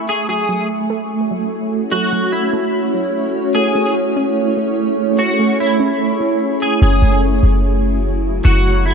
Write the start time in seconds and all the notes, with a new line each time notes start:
Already playing: A3 C#4 E5 G#5 C#6
0.09 G#4
0.29 F#3 A3 C#4 E4 F#4 G#4 C#5
0.49 F#3
0.90 A3
1.31 F#3
1.92 F#3 F#4
2.13 F#3
2.32 E4
2.53 A3
2.94 F#3
3.55 A3 E4 G#4
3.75 A3
4.16 C#4
4.57 A3
5.18 A3 F#4
5.39 A3
5.60 E4
5.80 C#4
6.20 A3
6.62 G#4
6.82 F#1 C#3 F#3 A3 E4 F#4 G#4
7.02 F#1
7.43 F#1
8.45 F#1 F#4
8.86 E4